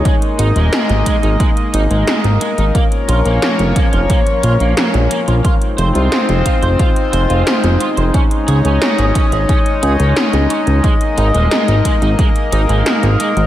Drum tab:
HH |xxxxxxxxxxxxxxxx|xxxxxxxxxxxxxxxx|xxxxxxxxxxxxxxxx|xxxxxxxxxxxxxxxx|
SD |----o-------o---|----o-------o---|----o-------o---|----o-------o---|
BD |o-----o-o-------|o-----o-o-------|o-----o-o-------|o-----o-o-------|

HH |xxxxxxxxxxxxxxxx|
SD |----o-------o---|
BD |o-----o-o-------|